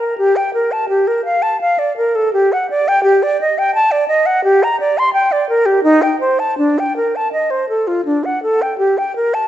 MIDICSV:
0, 0, Header, 1, 2, 480
1, 0, Start_track
1, 0, Key_signature, -2, "minor"
1, 0, Tempo, 721154
1, 113, Time_signature, 3, 2, 24, 8
1, 2032, Tempo, 696056
1, 3952, Tempo, 733496
1, 6334, End_track
2, 0, Start_track
2, 0, Title_t, "Flute"
2, 0, Program_c, 0, 73
2, 0, Note_on_c, 0, 70, 48
2, 116, Note_off_c, 0, 70, 0
2, 119, Note_on_c, 0, 67, 69
2, 241, Note_on_c, 0, 79, 60
2, 251, Note_off_c, 0, 67, 0
2, 356, Note_off_c, 0, 79, 0
2, 359, Note_on_c, 0, 70, 53
2, 479, Note_on_c, 0, 81, 59
2, 489, Note_off_c, 0, 70, 0
2, 588, Note_off_c, 0, 81, 0
2, 592, Note_on_c, 0, 67, 58
2, 715, Note_on_c, 0, 70, 54
2, 725, Note_off_c, 0, 67, 0
2, 830, Note_off_c, 0, 70, 0
2, 832, Note_on_c, 0, 77, 61
2, 947, Note_on_c, 0, 81, 62
2, 957, Note_off_c, 0, 77, 0
2, 1064, Note_off_c, 0, 81, 0
2, 1072, Note_on_c, 0, 77, 70
2, 1189, Note_on_c, 0, 74, 62
2, 1199, Note_off_c, 0, 77, 0
2, 1306, Note_off_c, 0, 74, 0
2, 1312, Note_on_c, 0, 70, 59
2, 1433, Note_on_c, 0, 69, 60
2, 1443, Note_off_c, 0, 70, 0
2, 1548, Note_off_c, 0, 69, 0
2, 1552, Note_on_c, 0, 67, 70
2, 1681, Note_on_c, 0, 78, 64
2, 1690, Note_off_c, 0, 67, 0
2, 1795, Note_off_c, 0, 78, 0
2, 1799, Note_on_c, 0, 74, 67
2, 1918, Note_on_c, 0, 79, 74
2, 1928, Note_off_c, 0, 74, 0
2, 2016, Note_off_c, 0, 79, 0
2, 2020, Note_on_c, 0, 67, 75
2, 2152, Note_on_c, 0, 74, 66
2, 2163, Note_off_c, 0, 67, 0
2, 2273, Note_off_c, 0, 74, 0
2, 2278, Note_on_c, 0, 75, 73
2, 2398, Note_on_c, 0, 79, 76
2, 2408, Note_off_c, 0, 75, 0
2, 2508, Note_off_c, 0, 79, 0
2, 2512, Note_on_c, 0, 81, 81
2, 2626, Note_on_c, 0, 74, 71
2, 2637, Note_off_c, 0, 81, 0
2, 2736, Note_off_c, 0, 74, 0
2, 2741, Note_on_c, 0, 75, 74
2, 2864, Note_on_c, 0, 78, 71
2, 2874, Note_off_c, 0, 75, 0
2, 2985, Note_off_c, 0, 78, 0
2, 2989, Note_on_c, 0, 67, 77
2, 3122, Note_on_c, 0, 82, 67
2, 3132, Note_off_c, 0, 67, 0
2, 3233, Note_off_c, 0, 82, 0
2, 3238, Note_on_c, 0, 74, 66
2, 3363, Note_on_c, 0, 84, 75
2, 3373, Note_off_c, 0, 74, 0
2, 3463, Note_off_c, 0, 84, 0
2, 3467, Note_on_c, 0, 79, 79
2, 3595, Note_on_c, 0, 74, 69
2, 3605, Note_off_c, 0, 79, 0
2, 3711, Note_off_c, 0, 74, 0
2, 3715, Note_on_c, 0, 70, 69
2, 3828, Note_on_c, 0, 67, 67
2, 3839, Note_off_c, 0, 70, 0
2, 3946, Note_off_c, 0, 67, 0
2, 3950, Note_on_c, 0, 63, 86
2, 4073, Note_on_c, 0, 79, 66
2, 4083, Note_off_c, 0, 63, 0
2, 4186, Note_off_c, 0, 79, 0
2, 4190, Note_on_c, 0, 72, 62
2, 4316, Note_on_c, 0, 81, 58
2, 4325, Note_off_c, 0, 72, 0
2, 4434, Note_off_c, 0, 81, 0
2, 4438, Note_on_c, 0, 62, 66
2, 4575, Note_on_c, 0, 79, 55
2, 4585, Note_off_c, 0, 62, 0
2, 4688, Note_off_c, 0, 79, 0
2, 4691, Note_on_c, 0, 70, 56
2, 4817, Note_on_c, 0, 81, 57
2, 4826, Note_off_c, 0, 70, 0
2, 4921, Note_off_c, 0, 81, 0
2, 4925, Note_on_c, 0, 75, 55
2, 5043, Note_on_c, 0, 72, 48
2, 5053, Note_off_c, 0, 75, 0
2, 5161, Note_off_c, 0, 72, 0
2, 5165, Note_on_c, 0, 69, 53
2, 5285, Note_on_c, 0, 65, 49
2, 5295, Note_off_c, 0, 69, 0
2, 5398, Note_off_c, 0, 65, 0
2, 5402, Note_on_c, 0, 62, 66
2, 5527, Note_on_c, 0, 78, 54
2, 5537, Note_off_c, 0, 62, 0
2, 5646, Note_off_c, 0, 78, 0
2, 5649, Note_on_c, 0, 69, 54
2, 5773, Note_on_c, 0, 79, 57
2, 5783, Note_off_c, 0, 69, 0
2, 5874, Note_off_c, 0, 79, 0
2, 5878, Note_on_c, 0, 67, 70
2, 6008, Note_on_c, 0, 79, 52
2, 6018, Note_off_c, 0, 67, 0
2, 6122, Note_off_c, 0, 79, 0
2, 6126, Note_on_c, 0, 70, 57
2, 6245, Note_on_c, 0, 81, 58
2, 6255, Note_off_c, 0, 70, 0
2, 6334, Note_off_c, 0, 81, 0
2, 6334, End_track
0, 0, End_of_file